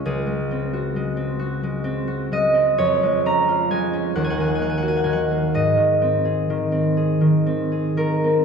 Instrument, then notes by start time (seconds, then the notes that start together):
harp
Already playing: G#3 C#4 F4 C#5 F5
0.05 C#2 G#4
0.27 G#3
0.51 C4
0.73 F#4
0.96 G#3
1.17 C4
1.39 F#4
1.63 G#3
1.84 C4
2.08 F#4
2.32 G#3 D#5
2.54 C4
2.78 F2 C#5
3.03 G#3
3.26 C#4 A#5
3.49 F4
3.71 G#3 G#5
3.93 C#4
4.15 D#2 F#5
4.24 G#5
4.30 F#5
4.38 D#3 G#5
4.48 F#5
4.55 G#5
4.59 A#3 F#5
4.70 G#5
4.78 F#5
4.82 F#4
4.88 G#5
4.97 F#5
5.04 D#3 G#5
5.13 F#5
5.31 A#3
5.54 G#2 D#5
5.77 D#3
6.02 C4
6.25 G#4
6.50 D#3
6.72 C4
6.97 G#4
7.21 D#3
7.46 C4
7.72 G#4
7.97 D#3 A#4
8.24 C4